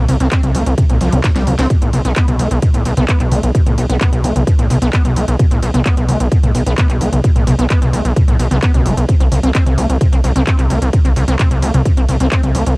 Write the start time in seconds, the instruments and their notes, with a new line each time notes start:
0.08 analog synth bass C2, acid bass C3, open hi-hat, mid tom, ride
0.20 analog synth bass C2, acid bass C4, closed hi-hat, ride
0.32 acid bass C4, kick, clap, closed hi-hat, ride
0.43 analog synth bass C2, acid bass C3, closed hi-hat, mid tom, ride
0.55 analog synth bass C2, acid bass A#3, open hi-hat, ride
0.66 analog synth bass C2, closed hi-hat, ride
0.78 acid bass C3, kick, closed hi-hat, mid tom, ride
0.89 analog synth bass C2, acid bass A#2, closed hi-hat, ride
1.01 analog synth bass C2, acid bass F3, open hi-hat, ride
1.12 analog synth bass C2, acid bass D#4, closed hi-hat, mid tom, ride
1.24 acid bass A#2, kick, snare, clap, closed hi-hat, ride
1.36 analog synth bass C2, acid bass G3, snare, closed hi-hat, ride
1.47 analog synth bass C2, acid bass F3, open hi-hat, mid tom, ride
1.59 analog synth bass C2, acid bass C4, snare, closed hi-hat, ride
1.70 acid bass B2, kick, closed hi-hat, ride
1.82 analog synth bass B1, acid bass A2, closed hi-hat, ride
1.93 analog synth bass B1, acid bass B2, open hi-hat, mid tom, ride
2.05 analog synth bass B1, acid bass B3, closed hi-hat, ride
2.16 acid bass B3, kick, clap, closed hi-hat, ride
2.28 analog synth bass B1, acid bass B2, closed hi-hat, mid tom, ride
2.39 analog synth bass B1, acid bass A3, open hi-hat, ride
2.51 analog synth bass B1, closed hi-hat, ride
2.62 acid bass B2, kick, closed hi-hat, mid tom, ride
2.74 analog synth bass B1, acid bass A2, closed hi-hat, ride
2.85 analog synth bass B1, acid bass B2, open hi-hat, ride
2.97 analog synth bass B1, acid bass B3, closed hi-hat, mid tom, ride
3.09 acid bass B3, kick, clap, closed hi-hat, ride
3.20 analog synth bass B1, acid bass B2, clap, closed hi-hat, ride
3.32 analog synth bass B1, acid bass A3, open hi-hat, mid tom, ride
3.43 analog synth bass B1, closed hi-hat, ride
3.55 acid bass B2, kick, closed hi-hat, ride
3.66 analog synth bass B1, acid bass A2, closed hi-hat, mid tom, ride
3.78 analog synth bass B1, acid bass B2, open hi-hat, ride
3.90 analog synth bass B1, acid bass B3, closed hi-hat, ride
4.01 acid bass B3, kick, clap, closed hi-hat, mid tom, ride
4.13 analog synth bass B1, acid bass B2, closed hi-hat, ride
4.24 analog synth bass B1, acid bass A3, open hi-hat, ride
4.36 analog synth bass B1, closed hi-hat, mid tom, ride
4.47 acid bass B2, kick, closed hi-hat, ride
4.59 analog synth bass B1, acid bass A2, closed hi-hat, ride
4.70 analog synth bass B1, acid bass B2, open hi-hat, mid tom, ride
4.82 analog synth bass B1, acid bass B3, closed hi-hat, ride
4.93 acid bass B3, kick, clap, closed hi-hat, ride
5.05 analog synth bass B1, acid bass B2, closed hi-hat, mid tom, ride
5.16 analog synth bass B1, acid bass A3, open hi-hat, ride
5.28 analog synth bass B1, closed hi-hat, ride
5.39 acid bass B2, kick, closed hi-hat, mid tom, ride
5.51 analog synth bass B1, acid bass A2, closed hi-hat, ride
5.62 analog synth bass B1, acid bass B2, open hi-hat, ride
5.74 analog synth bass B1, acid bass B3, closed hi-hat, mid tom, ride
5.86 acid bass B3, kick, clap, closed hi-hat, ride
5.97 analog synth bass B1, acid bass B2, closed hi-hat, ride
6.09 analog synth bass B1, acid bass A3, open hi-hat, mid tom, ride
6.20 analog synth bass B1, closed hi-hat, ride
6.32 acid bass B2, kick, closed hi-hat, ride
6.43 analog synth bass B1, acid bass A2, closed hi-hat, mid tom, ride
6.55 analog synth bass B1, acid bass B2, open hi-hat, ride
6.66 analog synth bass B1, acid bass B3, closed hi-hat, ride
6.78 acid bass B3, kick, clap, closed hi-hat, mid tom, ride
6.89 analog synth bass B1, acid bass B2, clap, closed hi-hat, ride
7.01 analog synth bass B1, acid bass A3, open hi-hat, ride
7.12 analog synth bass B1, closed hi-hat, mid tom, ride
7.24 acid bass B2, kick, closed hi-hat, ride
7.36 analog synth bass B1, acid bass A2, closed hi-hat, ride
7.47 analog synth bass B1, acid bass B2, open hi-hat, mid tom, ride
7.59 analog synth bass B1, acid bass B3, closed hi-hat, ride
7.70 acid bass B3, kick, clap, closed hi-hat, ride
7.82 analog synth bass B1, acid bass B2, closed hi-hat, mid tom, ride
7.93 analog synth bass B1, acid bass A3, open hi-hat, ride
8.05 analog synth bass B1, closed hi-hat, ride
8.16 acid bass B2, kick, closed hi-hat, mid tom, ride
8.28 analog synth bass B1, acid bass A2, closed hi-hat, ride
8.39 analog synth bass B1, acid bass B2, open hi-hat, ride
8.51 analog synth bass B1, acid bass B3, closed hi-hat, mid tom, ride
8.62 acid bass B3, kick, clap, closed hi-hat, ride
8.74 analog synth bass C#2, acid bass B2, closed hi-hat, ride
8.85 analog synth bass F#1, acid bass A3, open hi-hat, mid tom, ride
8.97 analog synth bass B1, closed hi-hat, ride
9.08 acid bass C3, kick, closed hi-hat, ride
9.20 analog synth bass C2, acid bass C4, closed hi-hat, ride
9.32 analog synth bass C2, acid bass C3, open hi-hat, mid tom, ride
9.43 analog synth bass C2, acid bass C4, closed hi-hat, ride
9.55 acid bass C4, kick, clap, closed hi-hat, ride
9.66 analog synth bass C2, acid bass C3, closed hi-hat, mid tom, ride
9.78 analog synth bass C2, acid bass A#3, open hi-hat, ride
9.90 analog synth bass C2, closed hi-hat, ride
10.01 acid bass C3, kick, closed hi-hat, mid tom, ride
10.12 analog synth bass C2, acid bass C4, closed hi-hat, ride
10.24 analog synth bass C2, acid bass C3, open hi-hat, ride
10.36 analog synth bass C2, acid bass C4, closed hi-hat, mid tom, ride
10.47 acid bass C4, kick, clap, closed hi-hat, ride
10.59 analog synth bass C2, acid bass C3, clap, closed hi-hat, ride
10.70 analog synth bass C2, acid bass A#3, open hi-hat, mid tom, ride
10.82 analog synth bass C2, closed hi-hat, ride
10.93 acid bass C3, kick, closed hi-hat, ride
11.05 analog synth bass C2, acid bass C4, closed hi-hat, mid tom, ride
11.16 analog synth bass C2, acid bass C3, open hi-hat, ride
11.28 analog synth bass C2, acid bass C4, closed hi-hat, ride
11.39 acid bass C4, kick, clap, closed hi-hat, mid tom, ride
11.51 analog synth bass C2, acid bass C3, closed hi-hat, ride
11.62 analog synth bass C2, acid bass A#3, open hi-hat, ride
11.74 analog synth bass C2, closed hi-hat, mid tom, ride
11.86 acid bass C3, kick, closed hi-hat, ride
11.97 analog synth bass C2, acid bass C4, closed hi-hat, ride
12.09 analog synth bass C2, acid bass C3, open hi-hat, mid tom, ride
12.20 analog synth bass C2, acid bass C4, closed hi-hat, ride
12.32 acid bass C4, kick, clap, closed hi-hat, ride
12.43 analog synth bass C2, acid bass C3, closed hi-hat, mid tom, ride
12.55 analog synth bass C2, acid bass A#3, open hi-hat, ride
12.66 analog synth bass C2, closed hi-hat, ride